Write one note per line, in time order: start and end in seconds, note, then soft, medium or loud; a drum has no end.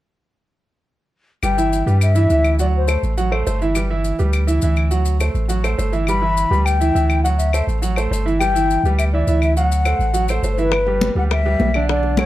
1.43 1.84 G1 medium
1.43 1.55 G3 medium
1.43 1.55 G4 medium
1.43 1.55 B4 medium
1.43 1.98 G5 loud
1.43 claves medium
1.43 maracas medium
1.57 1.81 E3 medium
1.57 1.82 E4 medium
1.57 1.82 E5 medium
1.57 maracas medium
1.73 maracas medium
1.86 2.27 G2 medium
1.86 2.10 G3 medium
1.86 2.11 G4 medium
1.86 2.11 B4 medium
1.86 maracas soft
2.01 2.56 E5 medium
2.01 claves medium
2.01 maracas medium
2.15 2.27 E3 medium
2.15 2.28 E4 medium
2.15 2.28 E5 medium
2.15 maracas medium
2.30 2.97 D2 loud
2.30 2.54 E3 medium
2.30 2.55 E4 medium
2.30 2.55 E5 medium
2.30 maracas medium
2.44 claves medium
2.44 maracas soft
2.59 2.83 F#3 medium
2.59 2.84 F#4 medium
2.59 2.67 D5 medium
2.59 2.84 F#5 medium
2.59 maracas medium
2.77 3.03 C5 medium
2.87 3.12 A3 medium
2.87 3.12 A4 medium
2.87 3.12 C5 medium
2.87 claves medium
2.87 maracas medium
3.03 3.44 A1 medium
3.03 maracas soft
3.18 3.30 F#3 medium
3.18 3.30 F#4 medium
3.18 3.29 F#5 medium
3.18 maracas medium
3.31 3.44 A3 medium
3.31 3.44 A4 medium
3.31 3.44 C5 medium
3.31 claves medium
3.47 4.14 G1 loud
3.47 3.58 A3 medium
3.47 3.59 A4 medium
3.47 3.59 C5 medium
3.47 maracas medium
3.61 3.73 E3 medium
3.61 3.74 E4 medium
3.61 3.74 E5 medium
3.61 maracas soft
3.75 3.88 G3 medium
3.75 3.88 G4 medium
3.75 3.88 B4 medium
3.75 claves medium
3.75 maracas medium
3.90 4.14 E3 medium
3.90 4.14 E4 medium
3.90 4.14 E5 medium
4.04 maracas medium
4.19 4.60 D2 loud
4.19 4.43 G3 medium
4.19 4.43 G4 medium
4.19 4.43 B4 medium
4.19 maracas soft
4.33 claves medium
4.33 maracas medium
4.47 4.59 E3 medium
4.47 4.60 E4 medium
4.47 4.60 E5 medium
4.47 maracas medium
4.62 5.30 D2 medium
4.62 4.87 E3 medium
4.62 4.87 E4 medium
4.62 4.87 E5 medium
4.62 maracas medium
4.76 claves medium
4.76 maracas soft
4.91 5.15 F#3 medium
4.91 5.15 F#4 medium
4.91 5.15 F#5 medium
4.91 maracas medium
5.05 maracas medium
5.20 5.44 A3 medium
5.20 5.45 A4 medium
5.20 5.45 C5 medium
5.20 claves medium
5.20 maracas medium
5.34 5.75 A1 loud
5.34 maracas soft
5.48 5.61 F#3 medium
5.48 5.61 F#4 medium
5.48 5.62 F#5 medium
5.48 maracas medium
5.63 5.76 A3 medium
5.63 5.76 A4 medium
5.63 5.76 C5 medium
5.63 claves medium
5.63 maracas medium
5.78 6.46 G1 medium
5.78 5.90 A3 medium
5.78 5.90 A4 medium
5.78 5.91 C5 medium
5.78 maracas medium
5.92 6.05 E3 medium
5.92 6.05 E4 medium
5.92 6.05 E5 medium
5.92 maracas soft
6.07 6.20 G3 medium
6.07 6.20 G4 medium
6.07 6.20 B4 medium
6.07 6.67 B5 loud
6.07 claves medium
6.07 maracas medium
6.21 6.46 E3 medium
6.21 6.46 E4 medium
6.21 6.46 E5 medium
6.37 maracas medium
6.51 6.92 D2 medium
6.51 6.75 G3 medium
6.51 6.75 G4 medium
6.51 6.75 B4 medium
6.51 maracas soft
6.65 7.23 G5 medium
6.65 claves medium
6.65 maracas medium
6.80 6.92 E3 medium
6.80 6.92 E4 medium
6.80 6.93 E5 medium
6.80 maracas medium
6.95 7.62 D2 medium
6.95 7.19 E3 medium
6.95 7.19 E4 medium
6.95 7.19 E5 medium
6.95 maracas medium
7.10 claves medium
7.10 maracas soft
7.23 7.48 F#3 medium
7.23 7.48 F#4 medium
7.23 7.29 F#5 medium
7.23 7.48 F#5 medium
7.23 maracas medium
7.38 7.65 E5 medium
7.38 maracas medium
7.53 7.77 A3 medium
7.53 7.78 A4 medium
7.53 7.77 C5 medium
7.53 claves medium
7.53 maracas medium
7.67 8.08 A1 medium
7.67 maracas soft
7.82 7.94 F#3 medium
7.82 7.94 F#4 medium
7.82 7.94 F#5 medium
7.82 maracas medium
7.96 8.09 A3 medium
7.96 8.09 A4 medium
7.96 8.09 C5 medium
7.96 claves medium
7.96 maracas medium
8.11 8.78 G1 loud
8.11 8.23 A3 medium
8.11 8.23 A4 medium
8.11 8.23 C5 medium
8.11 maracas medium
8.26 8.38 E3 medium
8.26 8.38 E4 medium
8.26 8.38 E5 medium
8.26 maracas soft
8.39 8.52 G3 medium
8.39 8.52 G4 medium
8.39 8.52 B4 medium
8.39 8.94 G5 loud
8.39 claves medium
8.39 maracas medium
8.55 8.79 E3 medium
8.55 8.79 E4 medium
8.55 8.79 E5 medium
8.55 maracas medium
8.71 maracas medium
8.84 9.24 D2 medium
8.84 9.09 G3 medium
8.84 9.09 G4 medium
8.84 9.09 B4 medium
8.84 maracas soft
8.99 9.05 E5 medium
8.99 claves medium
8.99 maracas medium
9.13 9.25 E3 medium
9.13 9.25 E4 medium
9.13 9.40 D5 medium
9.13 9.26 E5 medium
9.27 9.94 D2 loud
9.27 9.51 E3 medium
9.27 9.52 E4 medium
9.27 9.52 E5 medium
9.27 maracas medium
9.42 9.56 E5 medium
9.42 claves medium
9.42 maracas soft
9.57 9.81 F#3 medium
9.57 9.81 F#4 medium
9.57 10.40 F#5 medium
9.57 9.81 F#5 medium
9.57 maracas medium
9.72 maracas medium
9.85 10.09 A3 medium
9.85 10.09 A4 medium
9.85 10.10 C5 medium
9.85 claves medium
9.85 maracas medium
9.99 10.40 A1 loud
9.99 maracas soft
10.13 10.26 F#3 medium
10.13 10.26 F#4 medium
10.13 10.26 F#5 medium
10.13 maracas medium
10.28 10.41 A3 medium
10.28 10.41 A4 medium
10.28 10.42 C5 medium
10.28 claves medium
10.28 maracas medium
10.43 11.10 G1 loud
10.43 10.56 A3 medium
10.43 10.56 A4 medium
10.43 10.56 C5 medium
10.43 maracas medium
10.53 10.61 C5 medium
10.58 10.70 E3 medium
10.58 10.70 E4 medium
10.58 11.17 B4 medium
10.58 10.70 E5 medium
10.58 maracas soft
10.72 high bongo medium
10.72 high conga soft
10.72 claves medium
10.87 11.11 G3 medium
10.87 11.11 G4 medium
10.87 11.12 B4 medium
10.87 high bongo soft
10.87 high conga soft
11.01 high bongo medium
11.01 high conga medium
11.15 11.56 D2 loud
11.15 11.40 G3 medium
11.15 11.40 G4 medium
11.15 11.41 B4 medium
11.15 11.24 F#5 medium
11.15 high bongo soft
11.31 11.85 E5 medium
11.31 high bongo medium
11.31 high conga soft
11.31 claves medium
11.45 11.69 G3 medium
11.45 11.69 G4 medium
11.45 11.69 B4 medium
11.45 high conga soft
11.59 12.26 B1 loud
11.59 high bongo soft
11.59 low bongo medium
11.59 high conga medium
11.74 11.87 D3 medium
11.74 11.87 D4 medium
11.74 11.87 D5 medium
11.74 high bongo soft
11.74 claves medium
11.89 12.13 D3 medium
11.89 12.13 D4 medium
11.89 12.13 D5 medium
11.89 12.21 D5 medium
11.89 high bongo medium
11.89 high conga soft
12.03 high bongo soft
12.03 high conga soft
12.17 12.26 F#3 medium
12.17 12.26 F#4 medium
12.17 12.26 A4 medium
12.17 12.26 C#5 medium
12.17 high bongo medium
12.17 high conga medium
12.17 claves medium